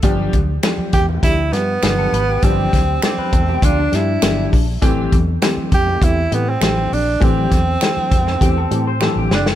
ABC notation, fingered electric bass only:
X:1
M:4/4
L:1/16
Q:1/4=100
K:Gmix
V:1 name="Fingered electric bass" clef=bass
G,,,2 D,,2 z2 E,,2 D,,2 G,,2 G,,,2 _A,,,2 | G,,,2 D,,2 z2 E,,2 D,,2 G,,2 G,,,2 _B,,,2 | A,,,2 E,,2 z2 F,,2 E,,2 A,,2 A,,,2 _B,,,2 | A,,,2 E,,2 z2 F,,2 E,,2 A,,3 A,,, ^F,,,2 |]